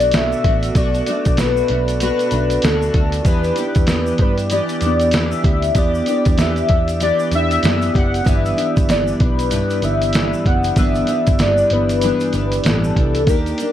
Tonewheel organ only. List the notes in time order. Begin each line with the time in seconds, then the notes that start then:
Already playing: B3 F#4 A4 D5
3.23 B3 E4 G4
3.28 D5
8.23 B3 E4 G4
8.28 D5
13.25 A#3 D#4 G4
13.30 D5